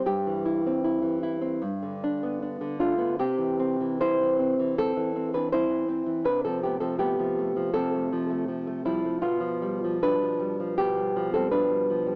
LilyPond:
\new Staff \with { instrumentName = "Nylon-string guitar" } { \time 4/4 \key c \major \tempo 4 = 79 << { g'2. r8 <a f'>8 | <c' g'>4 <e' c''>4 <c' a'>8. <d' b'>16 <e' c''>4 | <d' b'>16 <c' a'>16 <b g'>16 <c' a'>16 <b g'>4 <c' a'>4 r8 <g e'>8 | <b f'>4 <d' b'>4 <b g'>8. <c' a'>16 <d' b'>4 | } \\ { g,16 e16 e'16 c'16 e'16 e16 e'16 c'16 g,16 d16 d'16 b16 d'16 d16 d'16 b16 | c16 e16 c'16 e16 c'16 e16 c'16 e8 e16 c'16 e16 c'16 e16 c'16 e16 | c16 f16 a16 f16 a16 f16 a16 f16 c16 a16 f16 a16 f16 a16 f16 a16 | b,16 f16 g16 f16 g16 f16 g16 f16 b,16 g16 f16 g16 f16 g16 f16 g16 | } >> }